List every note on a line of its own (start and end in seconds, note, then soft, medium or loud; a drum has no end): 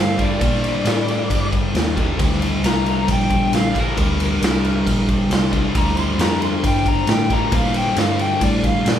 0.00 0.22 G2 loud
0.00 0.39 G2 medium
0.00 0.18 D3 medium
0.00 0.18 G3 loud
0.00 0.19 F5 medium
0.18 0.41 D3 medium
0.18 0.43 G3 medium
0.18 1.50 D5 loud
0.18 kick medium
0.18 ride medium
0.22 0.39 G2 medium
0.39 1.99 G2 loud
0.39 0.84 A#2 loud
0.39 1.96 D3 medium
0.39 kick loud
0.39 ride loud
0.43 1.96 G3 loud
0.55 snare soft
0.64 ride medium
0.85 1.28 A2 medium
0.85 snare loud
0.85 ride loud
1.08 ride medium
1.30 1.73 G2 medium
1.30 kick medium
1.30 ride loud
1.53 kick medium
1.53 ride medium
1.74 2.18 D#2 medium
1.74 snare loud
1.74 ride medium
1.96 2.18 G2 medium
1.96 2.19 D3 medium
1.96 2.22 G3 medium
1.96 kick medium
1.96 ride medium
2.18 2.62 D2 medium
2.18 3.77 G2 loud
2.18 3.74 D3 loud
2.18 3.72 G3 loud
2.18 kick loud
2.18 ride loud
2.33 snare soft
2.42 ride medium
2.63 3.07 C2 medium
2.63 3.08 A#5 loud
2.63 snare loud
2.63 ride medium
2.86 ride medium
3.08 3.51 A#1 loud
3.08 3.53 G5 medium
3.08 kick medium
3.08 ride loud
3.30 kick medium
3.30 ride medium
3.53 3.96 A#1 loud
3.53 3.76 F5 medium
3.53 snare loud
3.53 ride medium
3.73 3.96 D3 medium
3.73 4.00 G3 medium
3.73 kick medium
3.73 ride medium
3.77 3.96 G2 medium
3.77 5.06 A#4 loud
3.97 4.40 D2 medium
3.97 5.54 G2 loud
3.97 5.52 D3 medium
3.97 5.51 G3 loud
3.97 kick loud
3.97 ride loud
4.20 ride medium
4.41 4.85 C2 medium
4.41 snare loud
4.41 ride loud
4.65 ride medium
4.86 5.29 A#1 loud
4.86 kick medium
4.86 ride loud
5.09 kick medium
5.09 ride medium
5.30 5.73 C2 loud
5.30 5.53 C6 medium
5.30 snare loud
5.30 ride medium
5.51 5.73 G2 medium
5.51 5.74 D3 medium
5.51 5.76 G3 medium
5.51 kick medium
5.51 ride medium
5.73 6.18 D2 medium
5.73 7.28 G2 medium
5.73 7.29 D3 medium
5.73 7.29 G3 loud
5.73 kick loud
5.73 ride loud
5.77 5.98 A#5 medium
5.88 snare soft
5.97 6.20 C6 medium
5.97 ride medium
6.18 6.62 F2 loud
6.18 6.42 A#5 loud
6.18 snare loud
6.18 ride loud
6.42 6.64 C6 medium
6.42 ride medium
6.63 7.07 G2 loud
6.63 6.87 G5 medium
6.63 kick loud
6.63 ride loud
6.86 7.09 A#5 medium
6.86 kick medium
6.86 ride medium
7.07 7.51 A2 medium
7.07 7.31 G5 medium
7.07 snare loud
7.07 ride medium
7.30 7.52 D3 medium
7.30 7.51 G3 medium
7.30 7.53 A#5 medium
7.30 kick medium
7.30 ride medium
7.34 7.50 G2 medium
7.52 8.99 G2 medium
7.52 7.95 A#2 medium
7.52 8.99 D3 loud
7.52 8.99 G3 loud
7.52 7.75 F5 loud
7.52 kick loud
7.52 ride loud
7.65 snare soft
7.74 7.97 G5 medium
7.74 ride medium
7.96 8.40 G2 medium
7.96 8.20 F5 medium
7.96 snare loud
7.96 ride loud
8.19 8.42 G5 loud
8.19 ride medium
8.41 8.84 A2 medium
8.41 8.64 D5 loud
8.41 kick loud
8.41 ride loud
8.64 8.85 F5 medium
8.64 kick medium
8.64 ride medium
8.85 8.99 A#2 medium
8.85 8.99 D5 medium
8.85 snare loud
8.85 ride loud